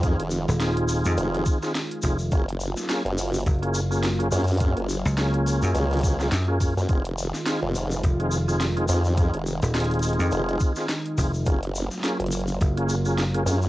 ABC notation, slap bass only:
X:1
M:4/4
L:1/16
Q:"Swing 16ths" 1/4=105
K:Fphr
V:1 name="Slap bass" clef=bass
z3 E,,,4 F,, z6 F,,,2 | z8 G,,,6 z2 | z3 D,,4 G,, z4 G,,3 z | z8 F,,,6 z2 |
z3 E,,,4 F,, z6 F,,,2 | z8 G,,,6 z2 |]